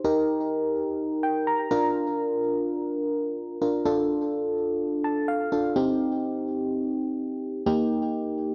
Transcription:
0.04 1.68 D#4 medium
0.04 1.68 G4 medium
0.04 1.68 A#4 medium
1.23 1.46 G5 medium
1.47 1.92 A#5 medium
1.71 3.58 D4 medium
1.71 3.58 F4 medium
1.71 3.58 A#4 medium
3.61 3.84 D4 medium
3.61 3.84 F4 soft
3.61 3.85 A#4 medium
3.85 5.49 D4 medium
3.85 5.49 F4 medium
3.85 5.49 A4 medium
5.04 5.27 A5 medium
5.28 5.72 F5 medium
5.52 5.76 D4 medium
5.52 5.76 F4 soft
5.52 5.76 A4 medium
5.76 7.62 C4 medium
5.76 7.63 D#4 medium
5.76 7.63 G4 medium
7.66 8.55 A#3 medium
7.66 8.55 D#4 medium
7.66 8.55 G4 medium

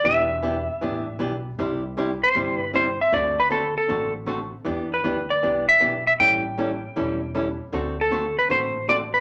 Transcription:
0.04 0.66 E1 medium
0.04 0.27 E3 medium
0.04 0.27 B3 medium
0.04 0.28 D4 medium
0.04 0.28 G4 medium
0.04 1.16 E5 medium
0.42 0.55 E3 medium
0.42 0.55 B3 medium
0.42 0.55 D4 medium
0.42 0.56 G4 medium
0.81 1.14 A1 medium
0.81 1.04 E3 medium
0.81 1.04 B3 medium
0.81 1.05 D4 medium
0.81 1.05 G4 medium
1.19 1.53 B1 medium
1.19 1.31 E3 medium
1.19 1.32 B3 medium
1.19 1.32 D4 medium
1.19 1.32 G4 medium
1.59 2.20 C2 medium
1.59 1.81 C3 medium
1.59 1.81 G3 medium
1.59 1.82 C4 medium
1.59 1.82 E4 medium
1.59 1.82 G4 medium
1.97 2.09 C3 medium
1.97 2.09 G3 medium
1.97 2.09 C4 medium
1.97 2.10 E4 medium
1.97 2.10 G4 medium
2.23 2.57 C5 medium
2.35 2.97 G1 medium
2.35 2.58 C3 medium
2.35 2.58 G3 medium
2.35 2.58 C4 medium
2.35 2.59 E4 medium
2.35 2.59 G4 medium
2.57 2.71 B4 medium
2.73 2.86 C3 medium
2.73 2.86 G3 medium
2.73 2.86 C4 medium
2.73 2.86 E4 medium
2.73 2.86 G4 medium
2.73 2.98 C5 loud
3.01 3.13 E5 medium
3.12 3.74 D2 medium
3.12 3.35 D3 medium
3.12 3.35 A3 medium
3.12 3.35 C4 medium
3.12 3.35 F#4 medium
3.12 3.35 A4 medium
3.12 3.39 D5 medium
3.40 3.51 B4 medium
3.50 3.62 D3 medium
3.50 3.62 A3 medium
3.50 3.63 C4 medium
3.50 3.63 F#4 medium
3.50 3.63 A4 medium
3.50 3.75 A4 medium
3.78 4.13 A4 medium
3.88 4.51 A1 medium
3.88 4.11 D3 medium
3.88 4.12 A3 medium
3.88 4.11 C4 medium
3.88 4.12 F#4 medium
3.88 4.12 A4 medium
4.26 4.39 D3 medium
4.26 4.39 A3 medium
4.26 4.39 C4 medium
4.26 4.39 F#4 medium
4.26 4.40 A4 medium
4.65 4.97 E2 medium
4.65 4.88 E3 medium
4.65 4.88 B3 medium
4.65 4.88 D4 medium
4.65 4.89 G4 medium
4.94 5.32 B4 medium
5.04 5.37 D2 medium
5.04 5.16 E3 medium
5.04 5.16 B3 medium
5.04 5.16 D4 medium
5.04 5.17 G4 medium
5.30 5.66 D5 medium
5.43 5.76 C2 medium
5.43 5.65 E3 soft
5.43 5.66 B3 medium
5.43 5.66 D4 medium
5.43 5.66 G4 medium
5.69 6.06 E5 loud
5.80 6.14 B1 medium
5.80 5.92 E3 medium
5.80 5.93 B3 medium
5.80 5.93 D4 medium
5.80 5.93 G4 medium
6.07 6.12 E5 medium
6.20 6.81 A1 loud
6.20 6.42 E3 medium
6.20 6.42 G3 medium
6.20 6.43 C#4 medium
6.20 6.43 E4 medium
6.20 6.43 A4 medium
6.20 7.31 G5 medium
6.58 6.70 E3 medium
6.58 6.70 G3 medium
6.58 6.70 C#4 medium
6.58 6.70 E4 medium
6.58 6.70 A4 medium
6.96 7.58 E1 medium
6.96 7.19 E3 medium
6.96 7.19 G3 medium
6.96 7.19 C#4 medium
6.96 7.19 E4 medium
6.96 7.19 A4 medium
7.35 7.47 E3 medium
7.35 7.47 G3 medium
7.35 7.47 C#4 medium
7.35 7.47 E4 medium
7.35 7.47 A4 medium
7.72 8.34 D2 medium
7.72 7.95 D3 medium
7.72 7.96 A3 medium
7.72 7.96 C4 medium
7.72 7.96 F#4 medium
7.72 7.96 A4 medium
8.01 8.36 A4 medium
8.11 8.23 D3 medium
8.11 8.24 A3 medium
8.11 8.23 C4 medium
8.11 8.24 F#4 medium
8.11 8.24 A4 medium
8.39 8.50 B4 medium
8.49 9.11 A1 medium
8.49 8.72 D3 medium
8.49 8.73 A3 medium
8.49 8.73 C4 medium
8.49 8.73 F#4 medium
8.49 8.73 A4 medium
8.49 8.86 C5 loud
8.88 9.00 D3 medium
8.88 9.00 A3 medium
8.88 9.01 C4 medium
8.88 9.01 F#4 medium
8.88 9.01 A4 medium
8.88 8.96 D5 loud
9.14 9.20 B4 medium

